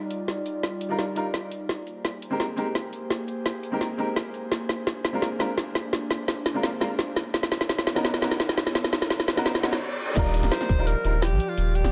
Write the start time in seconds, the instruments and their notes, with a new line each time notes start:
Already playing: analog synth pad G3 D#4 F4 D5
0.11 closed hi-hat
0.28 snare, closed hi-hat
0.46 closed hi-hat
0.63 snare, closed hi-hat
0.81 closed hi-hat
0.89 grand piano G3 D4 D#4 F4 A#4
0.99 snare, closed hi-hat
1.15 grand piano G3 D4 D#4 F4 A#4, closed hi-hat
1.34 snare, closed hi-hat
1.51 closed hi-hat
1.69 analog synth pad A#3 G4 G#4 C5, snare, closed hi-hat
1.87 closed hi-hat
2.05 snare, closed hi-hat
2.22 closed hi-hat
2.30 grand piano G#3 C4 D#4 G4 A#4
2.40 snare, closed hi-hat
2.56 grand piano G#3 C4 D#4 G4 A#4, closed hi-hat
2.75 snare, closed hi-hat
2.93 closed hi-hat
3.10 snare, closed hi-hat
3.28 closed hi-hat
3.46 snare, closed hi-hat
3.63 closed hi-hat
3.71 grand piano G#3 C4 D#4 G4 A#4
3.81 snare, closed hi-hat
3.97 grand piano G#3 C4 D#4 G4 A#4, closed hi-hat
4.16 snare, closed hi-hat
4.34 closed hi-hat
4.52 analog synth pad D4, snare, closed hi-hat, riser
4.69 snare, closed hi-hat
4.87 snare, closed hi-hat
5.05 snare, closed hi-hat
5.12 grand piano G#3 C4 D4 F4 A#4
5.22 snare, closed hi-hat
5.39 grand piano G#3 C4 D4 F4 A#4, snare, closed hi-hat
5.58 snare, closed hi-hat
5.75 snare, closed hi-hat
5.93 snare, closed hi-hat
6.11 snare, closed hi-hat
6.28 snare, closed hi-hat
6.46 snare, closed hi-hat
6.54 grand piano G#3 C4 D4 F4 A#4
6.63 snare, closed hi-hat
6.80 grand piano G#3 C4 D4 F4 A#4, snare, closed hi-hat
6.99 snare, closed hi-hat
7.16 analog synth pad B3 D#4 A#4 C#5, snare, closed hi-hat
7.34 snare, closed hi-hat
7.43 snare
7.52 snare, closed hi-hat
7.61 snare
7.69 snare, closed hi-hat
7.79 snare
7.87 snare, closed hi-hat
7.95 grand piano B3 C#4 D#4 F#4 A#4, snare
8.05 snare, closed hi-hat
8.14 snare
8.21 grand piano B3 C#4 D#4 F#4 A#4, snare, closed hi-hat
8.31 snare
8.40 snare, closed hi-hat
8.49 snare
8.58 snare, closed hi-hat
8.67 snare
8.75 snare, closed hi-hat
8.84 snare
8.93 snare, closed hi-hat
9.02 snare
9.10 snare, closed hi-hat
9.20 snare
9.28 snare, closed hi-hat
9.36 grand piano B3 C#4 D#4 F#4 A#4, snare
9.46 snare, closed hi-hat, reverse cymbal
9.55 snare
9.62 grand piano B3 C#4 D#4 F#4 A#4, snare, closed hi-hat
9.73 snare
10.14 sub bass D#1, analog synth pad F3 G4 D5, grand piano G3 D4 D#4 F4, kick, closed hi-hat, crash
10.19 grand piano A#4
10.34 closed hi-hat
10.43 sub bass D#1, snare
10.52 alto saxophone C5, snare, closed hi-hat
10.61 snare
10.69 sub bass D#1, kick, closed hi-hat
10.77 grand piano G3 D4 D#4 F4 A#4
10.87 alto saxophone A#4, closed hi-hat
11.03 sub bass D#1, grand piano G3 D4 D#4 F4 A#4, closed hi-hat
11.22 alto saxophone G4, snare, closed hi-hat
11.31 sub bass A#1
11.40 closed hi-hat
11.49 alto saxophone F4
11.58 sub bass D#1, closed hi-hat
11.75 alto saxophone G4, closed hi-hat
11.84 sub bass D#1, snare